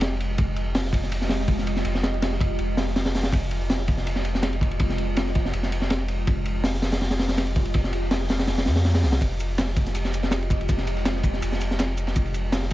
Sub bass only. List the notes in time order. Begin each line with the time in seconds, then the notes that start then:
Already playing: F1
0.38 F1
1.85 F1
2.59 F1
3.32 F1
4.80 F1
5.53 F1
6.27 F1
7.75 F1
8.48 F1
8.66 F2
9.03 C2
9.21 F1
10.69 F1
11.42 F1
12.16 F1